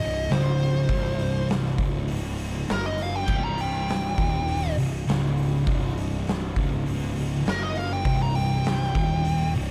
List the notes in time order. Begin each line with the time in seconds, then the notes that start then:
Already playing: D#5
0.00 C1 C2
0.29 C#1 C#2 C5, snare, open hi-hat
0.59 open hi-hat
0.89 C1 C2, kick, open hi-hat
1.19 open hi-hat
1.48 snare, open hi-hat
1.66 snare
1.78 C#1 C#2, kick, open hi-hat
2.08 open hi-hat
2.38 open hi-hat
2.68 F#1 F#2 A#4, snare, open hi-hat
2.86 D#5
2.98 open hi-hat
3.03 F5
3.15 G5
3.28 C1 C2, kick, crash
3.44 A#5
3.58 G5, open hi-hat
3.88 snare, open hi-hat
4.18 D#1 D#2, kick, open hi-hat
4.48 open hi-hat
4.78 C1 C2, open hi-hat
5.07 C#1 C#2, snare, open hi-hat
5.38 open hi-hat
5.67 C1 C2, kick, open hi-hat
5.97 open hi-hat
6.27 snare, open hi-hat
6.56 C#1 C#2, kick, open hi-hat
6.86 open hi-hat
7.16 open hi-hat
7.46 F#1 F#2 A#4, snare, open hi-hat
7.63 D#5
7.75 F5, open hi-hat
7.93 G5
8.05 C1 C2, kick, open hi-hat
8.22 A#5
8.35 G5, open hi-hat
8.64 snare, open hi-hat
8.83 snare
8.95 D#1 D#2, kick, open hi-hat
9.25 open hi-hat
9.55 C1 C2, open hi-hat